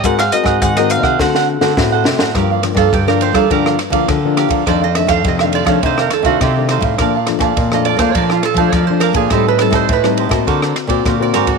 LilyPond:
<<
  \new Staff \with { instrumentName = "Mandolin" } { \time 4/4 \key d \phrygian \tempo 4 = 103 ges''16 f''16 ees''8 ges''16 ees''16 f''8 fis''4 r4 | \key g \minor r1 | r1 | r1 |
r1 | }
  \new Staff \with { instrumentName = "Cavaquinho" } { \time 4/4 \key d \phrygian <ees' aes' c'' ges''>16 <aes' c'' ges''>8 <aes' c'' ges''>16 <ees' aes' c'' ges''>16 <aes' c'' ges''>8 <aes' c'' ges''>16 <d' a' c'' fis''>16 <a' c'' fis''>16 r16 <a' c'' fis''>8 <a' c'' fis''>16 <d' a' c'' fis''>16 <a' c'' fis''>16 | \key g \minor <g' bes' d'' f''>16 <bes' d'' f''>16 r16 <bes' d'' f''>8 <bes' d'' f''>16 <g' bes' d'' f''>16 <bes' d'' f''>16 <g' bes' d'' f''>16 <bes' d'' f''>16 r16 <bes' d'' f''>16 <g' bes' d'' f''>8 <g' bes' d'' f''>16 <bes' d'' f''>16 | <ees' a' c'' f''>16 <a' c'' f''>16 r16 <a' c'' f''>8 <a' c'' f''>16 <ees' a' c'' f''>16 <a' c'' f''>16 <ees' a' c'' f''>16 <a' c'' f''>16 r16 <a' c'' f''>16 <ees' a' c'' f''>8 <ees' a' c'' f''>16 <a' c'' f''>16 | <bes' d'' f'' a''>16 <d'' f'' a''>16 r16 <d'' f'' a''>8 <d'' f'' a''>16 <bes' d'' f'' a''>16 <d'' f'' a''>16 <bes' d'' f'' a''>16 <d'' f'' a''>16 r16 <d'' f'' a''>16 <bes' d'' f'' a''>8 <bes' d'' f'' a''>16 <d'' f'' a''>16 |
<g' c'' ees'' a''>16 <c'' ees'' a''>16 r16 <c'' ees'' a''>8 <c'' ees'' a''>16 <g' c'' ees'' a''>16 <c'' ees'' a''>16 <fis' ais' c'' d''>16 <ais' c'' d''>16 r16 <ais' c'' d''>16 <fis' ais' c'' d''>8 <fis' ais' c'' d''>16 <ais' c'' d''>16 | }
  \new Staff \with { instrumentName = "Resonator guitar played with a steel bar" } { \time 4/4 \key d \phrygian r1 | \key g \minor r8. a'16 g'16 bes'16 c''16 a'16 bes'8 r4. | d''16 ees''16 e''16 f''16 ees''16 f''16 d''16 cis''16 c''16 bes'16 a'16 fis'16 g'4 | r4 r16 ees''16 d''16 c''16 d''16 f'16 a'16 c''16 d''16 c''16 bes'16 aes'16 |
a'16 b'16 a'16 c''16 b'8 r4. r16 d''16 ais'16 fis'16 | }
  \new Staff \with { instrumentName = "Nylon-string guitar" } { \time 4/4 \key d \phrygian << { <c' ges' bes'>16 r16 <c' ges' bes'>8. <c' ges' bes'>8. <a c' fis'>8. <a c' fis'>16 <a c' fis'>4 | \key g \minor <f bes d'>8 <f bes d'>8 r16 <f bes d'>8 <f bes d'>16 <f bes d'>8 r16 <f bes d'>8 <f bes d'>8. | <ees a d'>16 r16 <ees a d'>8. <ees a d'>8 <ees a d'>16 <ees a d'>8. <ees a d'>8 <ees a d'>8. | <f a d'>16 r16 <f a d'>8 r16 <f a d'>8 <f a d'>16 <f a d'>8. <f a d'>8 <f a d'>8. |
<g c' ees'>8 <g c' ees'>8 r16 <g c' ees'>8 <bes c' fis'>4 <ais c' fis'>8 <ais c' fis'>8. | } \\ { aes4 ees4 d4 a,4 | g,4 d4 g,4 d4 | f,4 c4 f,4 c4 | bes,4 f,4 bes,4 f,4 |
a,4 a,4 d4 d4 | } >> }
  \new Staff \with { instrumentName = "Nylon-string guitar" } { \clef bass \time 4/4 \key d \phrygian aes,8 r16 aes,16 aes,8. c16 d8. d16 a,8 c16 a,16 | \key g \minor g,8. g,16 g,8. g16 d8 r16 d16 d8. d16 | f,8. f,16 f,8. f16 c8 r16 c16 c8. a,16 | bes,8. bes,16 bes,8. bes16 f8 r16 f16 f8. bes,16 |
a,8. a,16 a,8. a,16 d8 r16 ais,16 ais,8 aes,8 | }
  \new DrumStaff \with { instrumentName = "Drums" } \drummode { \time 4/4 <hh bd>16 <hh ss>16 hh16 <hh bd ss>16 <hh bd>16 <hh ss>16 hh16 <bd ss>16 <bd sn>16 sn8 sn16 <bd sn>8 sn16 sn16 | <bd cymr ss>8 <cymr ss>16 <bd cymr ss>16 <bd cymr>16 ss16 cymr16 <bd cymr ss>16 <bd cymr>16 ss16 <cymr ss>16 <bd cymr>16 <bd cymr ss>8 <cymr ss>16 <bd cymr>16 | <bd cymr ss>8 <cymr ss>16 <bd cymr ss>16 <bd cymr>16 ss16 cymr16 <bd cymr ss>16 <bd cymr>16 ss16 <cymr ss>16 <bd cymr>16 <bd cymr ss>8 <cymr ss>16 <bd cymr>16 | <bd cymr ss>8 <cymr ss>16 <bd cymr ss>16 <bd cymr>16 ss16 cymr16 <bd cymr ss>16 <bd cymr>16 ss16 <cymr ss>16 <bd cymr>16 <bd cymr ss>8 <cymr ss>16 <bd cymr>16 |
<bd cymr ss>8 <cymr ss>16 <bd cymr ss>16 <bd cymr>16 ss16 cymr16 <bd cymr ss>16 <bd cymr>16 ss16 <cymr ss>16 <bd cymr>16 <bd cymr ss>8 <cymr ss>16 <bd cymr>16 | }
>>